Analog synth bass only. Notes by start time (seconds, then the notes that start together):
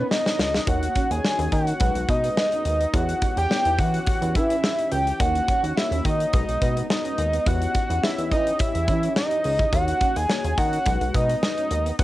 0.39 C#2
0.67 D#2
1.11 D#2
1.39 D#2
1.52 D#3
1.81 B1
1.95 B1
2.09 B2
2.65 D#2
2.94 E2
3.37 E2
3.65 E2
3.79 E3
4.22 E2
4.35 E3
4.92 C#2
5.20 D#2
5.63 D#2
5.91 D#2
6.05 D#3
6.34 B1
6.48 B1
6.62 B2
7.18 D#2
7.46 E2
7.90 E2
8.18 E2
8.31 E3
8.75 E2
8.88 E3
9.45 C#2
9.73 D#2
10.16 D#2
10.44 D#2
10.58 D#3
10.86 B1
11.01 B1
11.15 B2
11.71 D#2
11.99 E2